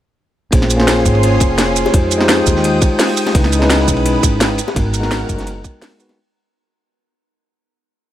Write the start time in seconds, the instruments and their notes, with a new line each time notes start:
0.51 upright bass A#1, tine electric piano A#3 C#4 F4 G#4 C5, analog synth pad C#4 G#4 C6, kick, closed hi-hat, ride
0.62 snare
0.70 closed hi-hat, ride, shaker
0.77 tine electric piano A#3 C#4 F4, snare
0.81 tine electric piano G#4 C5
0.88 snare, closed hi-hat, ride
0.97 snare
1.05 upright bass G#1, kick, closed hi-hat, ride, shaker
1.15 ride
1.23 closed hi-hat, ride
1.40 upright bass F1, kick, closed hi-hat, ride, shaker
1.58 snare, closed hi-hat, ride
1.76 closed hi-hat, ride, shaker
1.85 snare, high bongo
1.92 upright bass F2, tine electric piano G#3 D#4 F4 G4 C5, analog synth pad G#3 G5 D#6, kick, closed hi-hat, ride
2.11 closed hi-hat, ride, shaker
2.18 tine electric piano G#3 D#4 F4, snare
2.22 tine electric piano G4 C5
2.29 snare, closed hi-hat, ride
2.47 upright bass D#2, kick, closed hi-hat, ride, shaker
2.56 snare
2.64 closed hi-hat, ride
2.81 kick, closed hi-hat, ride, shaker
2.99 snare, closed hi-hat, open hi-hat
3.09 snare, ride
3.17 closed hi-hat, ride, shaker
3.27 snare, high bongo
3.33 upright bass C#2, tine electric piano G#3 C#4 D#4 E4 B4, analog synth pad B4, kick, closed hi-hat, ride
3.44 snare
3.52 closed hi-hat, ride, shaker
3.59 tine electric piano G#3 C#4 D#4, snare
3.63 tine electric piano E4 B4
3.70 snare, closed hi-hat, ride
3.80 snare
3.88 upright bass B1, kick, closed hi-hat, ride, shaker
3.97 ride
4.06 closed hi-hat, ride
4.23 upright bass G#1, kick, closed hi-hat, ride, shaker
4.40 snare, closed hi-hat, ride
4.58 analog synth pad A#4 F#5, closed hi-hat, ride, shaker
4.67 snare, high bongo
4.74 upright bass G#1, tine electric piano G#3 B3 D#4 F#4 A#4, kick, closed hi-hat, ride
4.94 closed hi-hat, ride, shaker
5.00 tine electric piano G#3 B3 D#4, snare
5.05 tine electric piano F#4 A#4
5.11 snare, closed hi-hat, ride
5.29 upright bass F#1, kick, closed hi-hat, ride, shaker
5.38 snare, closed hi-hat
5.47 closed hi-hat, ride
5.64 kick, closed hi-hat, ride, shaker
5.81 snare, closed hi-hat, open hi-hat
5.92 snare, ride
5.98 tine electric piano G#3 B3 D#4 F#4 B4, closed hi-hat, ride, shaker
6.09 snare, high bongo